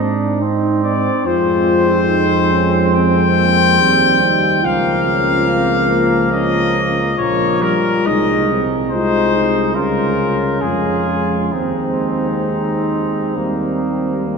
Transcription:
Already playing: G#2 C4 D#5
0.01 D4
0.42 C4 D#4
0.84 C4 D5
1.25 F2 G#3 C4 F4 C5
2.08 D#4
2.52 C#4
2.94 C4 G5
3.37 A#3
3.79 D#2 G3 C4
4.22 D#4
4.63 C#2 F3 A#3 F4 F5
5.07 C#4
5.50 C4
5.92 A#3
6.32 C#4 D#5
7.18 A#1 F3 A#3 F4 C#5
7.61 G3 A#4
8.05 C2 G#3 D#4 D#5
8.52 C4
8.91 G#3 D#4 F4 C5
9.35 D#4
9.74 C#2 G#3 C#4 F4 A#4
10.61 F2 G#3 F4 G#4
11.52 D#2 G#3 C4 D#4
12.46 D#4
13.36 D#2 G3 A#3 C4
14.27 A#3

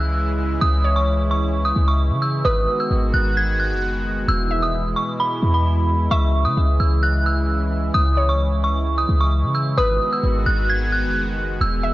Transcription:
Already playing: C#2 C#3 E3 G#3 E4 E6
0.61 C#2 D#6
0.84 C#5
0.96 C#6
1.31 C#6
1.65 D#6
1.76 C#2
1.88 C#6
2.11 C#3
2.22 E6
2.45 G#1 D#3 G#3 B3 F#4 B4 D#6
2.80 E6
2.91 G#1
3.14 G#1 F#6
3.37 G#6
3.59 F#6
3.71 F#1
4.28 E1 B2 E3 E4 E6
4.51 E5
4.62 D#6
4.96 C#6
5.20 B5
5.43 E2
5.54 B5
6.11 C#2 C#3 E3 E5 C#6
6.45 C#3 D#6
6.57 C#2
6.80 C#2 E6
7.03 F#6
7.26 E6
7.94 C#2 D#6
8.17 C#5
8.29 C#6
8.64 C#6
8.98 D#6
9.09 C#2
9.21 C#6
9.43 C#3
9.55 E6
9.78 G#1 D#3 G#3 B3 F#4 B4 D#6
10.13 E6
10.24 G#1
10.46 G#1 F#6
10.69 G#6
10.92 F#6
11.04 F#1
11.61 E1 E3 B3 G#4 E6
11.84 E5

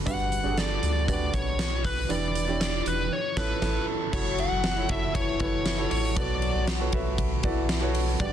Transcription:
0.05 G1 G2 D4 F#4 G4 B4 F#5, kick, closed hi-hat
0.32 closed hi-hat
0.44 G1 D4 F#4 G4 G#4
0.52 A4
0.57 D5, snare, closed hi-hat
0.83 D2, closed hi-hat
1.07 D4 F#4 G4 B4 D5, kick, closed hi-hat
1.33 B1 C#5, kick, closed hi-hat
1.59 snare, closed hi-hat
1.84 B4, kick, snare, open hi-hat
2.09 E1 E3 D4 E4 G4 B4 D5, closed hi-hat
2.35 closed hi-hat
2.47 D4 E4 G4 C#5
2.61 D5, snare, closed hi-hat
2.86 E1 B4, closed hi-hat
3.13 C#5
3.36 A1 C#4 E4 A4 B4 C#5, kick, snare, crash
3.61 A1 C#4 E4 A4 C#5, kick, snare, crash
4.12 F#1 F#3 E4 F#4 A4 C#5, kick, crash
4.38 F#5, ride
4.51 F#1
4.64 snare, ride
4.76 E4 F#4 A4 C#5
4.89 F#1 E4 F#4 A4 E5, kick, ride
5.15 E3 E4 C#5, kick, ride
5.40 F#1 E4 F#4 A4 B4 C#5, kick, ride
5.66 snare, ride
5.77 E4 F#4 A4 C#5
5.91 A1 C#5, open hi-hat, ride
6.16 B1 B2 F#3 F#4 A4 B4 D5, kick, hi-hat pedal, ride
6.42 ride
6.55 B1
6.67 snare, ride
6.80 F#4 A4 B4 C#5
6.92 B1 F#4 A4 B4 E5, kick, ride
7.18 kick, ride
7.43 B1 E3 E4 F#4 A4 B4 D5, kick, ride
7.69 snare, ride
7.81 F#4 A4 B4 C#5
7.95 open hi-hat, ride
8.19 G1 G2 D3 D4 F#4 G4 B4 D5, kick, hi-hat pedal, ride

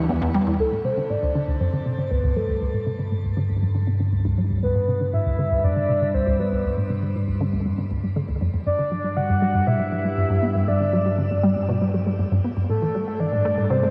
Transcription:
Already playing: D2
0.09 E2
0.22 E2
0.34 G3
0.47 E2
0.59 D2 G2 A4
0.72 A2
0.85 C3 C5
0.97 D3
1.10 A2 D5
1.23 D2
1.35 D3
1.48 D2
1.60 F#2 C5
1.73 D3
1.86 C3
1.98 D3
2.11 D2 B4
2.23 D2
2.36 F#3 A4
2.49 D2
2.61 D2
2.74 A2
2.86 C3
2.99 D3
3.12 A2
3.24 D2
3.37 D3
3.49 D2
3.62 F#2
3.75 D3
3.87 C3
4.00 D3
4.12 D2
4.25 D2
4.38 F#3
4.50 D2
4.63 D2 B4
4.76 A2
4.88 C3
5.01 D3
5.13 A2 E5
5.26 D2
5.38 D3
5.51 D2
5.64 F#2 D5
5.76 D3
5.89 C3
6.02 D3
6.14 D2 C5
6.27 D2
6.39 F#3 B4
6.52 D2
6.65 D2
6.77 A2
6.90 C3
7.02 D3
7.15 A2
7.28 D2
7.41 D3
7.53 D2
7.66 F#2
7.78 D3
7.91 D2
8.03 G2
8.16 D3
8.29 D2
8.41 F#2
8.54 F#2
8.66 G2 D5
8.79 D3
8.92 F#3
9.04 G3
9.17 D3 F#5
9.29 G2
9.42 G3
9.54 G2
9.67 B2 E5
9.80 G3
9.92 F#3
10.05 G3
10.17 G2
10.30 G2
10.43 B3
10.55 G2
10.68 G2 D5
10.80 D3
10.93 F#3
11.06 G3
11.18 D3
11.31 G2
11.43 G3
11.56 G2
11.69 B2
11.81 G3
11.94 F#3
12.06 G3
12.19 G2
12.32 G2
12.44 B3
12.57 G2
12.69 G2 A2 A4
12.82 E3
12.95 G3
13.07 A3
13.20 E3 D5
13.32 A2
13.45 A3
13.58 A2
13.70 C3 C5
13.83 A3

